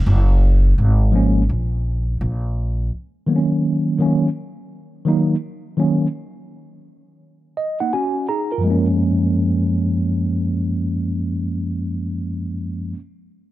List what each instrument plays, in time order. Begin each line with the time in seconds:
0.06 upright bass F#1
0.78 upright bass G#1
1.12 tine electric piano F3 G#3 A#3 C#4
1.49 upright bass A#1
2.21 upright bass A#1
3.27 tine electric piano D#3 F#3 A#3 B3
3.36 tine electric piano C#4
3.98 tine electric piano D#3 F#3 A#3 C#4
5.05 tine electric piano D#3 F#3 A#3 D#4
5.77 tine electric piano D#3 F#3 A#3 C#4
7.57 tine electric piano D#5
7.80 tine electric piano A#3 D#4 F#5
7.93 tine electric piano C#4 F#4 G#5
8.29 tine electric piano D#4 G#4 A#5
8.52 tine electric piano F4 A#4
8.58 tine electric piano F#2 F3
8.64 tine electric piano G#3 A#3
8.71 tine electric piano C#4